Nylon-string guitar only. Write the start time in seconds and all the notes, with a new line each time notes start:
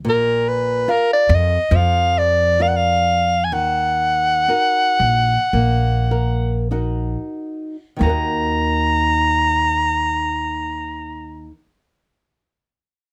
0.05 A#2
0.88 F4 A#4 F5
1.71 F3
2.59 F4 A#4 D5
3.52 D#3
4.48 D#4 F#4 A#4
5.54 A#3
6.11 A#4
6.71 D#4 F#4 A#4 F#5
7.96 D#3 A#3
8.02 D#4 F#4
8.06 A#4 F#5